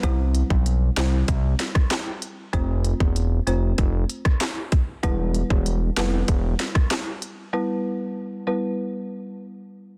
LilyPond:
<<
  \new Staff \with { instrumentName = "Marimba" } { \time 4/4 \key e \phrygian \tempo 4 = 96 <g c' e' c''>4. <g c' e' c''>8 r2 | <a c' f' c''>4. <a c' f' c''>8 r2 | <g b e' b'>4. <g b e' b'>8 r2 | <g b e' b'>4. <g b e' b'>8 r2 | }
  \new Staff \with { instrumentName = "Analog synth bass" } { \clef bass \time 4/4 \key e \phrygian c,8. b,,8. c,8 c,8 r4. | f,,8. e,,8. f,,8 f,,8 r4. | e,,8. e,,8. f,,8 e,,8 r4. | r1 | }
  \new DrumStaff \with { instrumentName = "Drums" } \drummode { \time 4/4 <hh bd>8 hh16 bd16 hh8 <hc hh sn>8 <hh bd>8 <hh sn>16 <bd ss>16 <hc hh sn>8 hh8 | <hh bd>8 hh16 bd16 hh8 hh8 <hh bd>8 hh16 <bd ss>16 <hc hh sn>8 <hh bd>8 | <hh bd>8 hh16 bd16 hh8 <hc hh sn>8 <hh bd>8 <hh sn>16 <bd ss>16 <hc hh sn>8 hh8 | r4 r4 r4 r4 | }
>>